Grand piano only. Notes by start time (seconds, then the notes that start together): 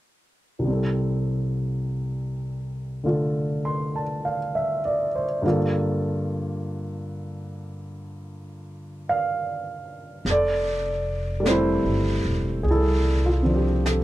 0.59 C2 C3
0.65 G3 C4
0.70 A4
3.04 D3 A3 F4 A4
3.65 C6
3.96 A5
4.25 F5
4.55 E5
4.85 D5
5.15 C5
5.42 G2 D3 A#3 F4
5.47 A4
9.09 F5
10.30 A4 D5
11.40 G3 A3
11.47 C4 E4 C5
12.63 G#4
12.70 E4 A4
13.26 F4
13.43 F3 C4 D4
13.55 G4
13.85 A4